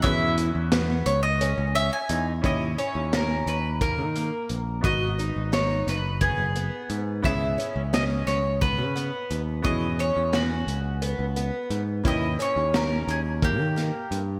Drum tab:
HH |xxxxxxx|xxxxxxx|xxxxxxx|xxxxxxx|
SD |--o----|--o----|--oo---|--oo---|
BD |o------|o---o--|o---o--|o---o--|

HH |xxxxxxx|xxxxxxx|
SD |--o----|--o--o-|
BD |o------|o---o--|